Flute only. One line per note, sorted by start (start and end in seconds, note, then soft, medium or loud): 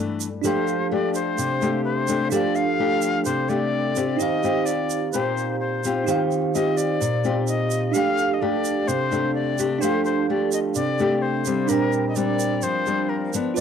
0.44 0.88 C5 medium
0.92 1.13 D5 medium
1.15 1.81 C5 medium
1.85 2.28 C5 medium
2.31 2.57 D5 medium
2.55 3.25 F5 loud
3.25 3.50 C5 medium
3.49 4.21 D5 loud
4.19 4.67 D#5 medium
4.66 5.12 D5 medium
5.12 5.56 C5 medium
5.60 6.23 C5 medium
6.53 6.78 D#5 medium
6.77 7.47 D5 medium
7.48 7.95 D#5 medium
7.93 8.35 F5 loud
8.34 8.42 D#5 medium
8.41 8.89 D5 medium
8.88 9.34 C5 medium
9.35 9.83 D5 medium
9.81 10.04 C5 medium
10.05 10.27 C5 medium
10.29 10.51 D5 medium
10.53 10.59 D#5 medium
10.75 11.23 D5 loud
11.22 11.70 C5 medium
11.69 12.08 A#4 medium
12.08 12.17 D#5 medium
12.16 12.65 D5 medium
12.63 13.11 C5 medium
13.09 13.33 A#4 medium
13.56 13.61 D5 loud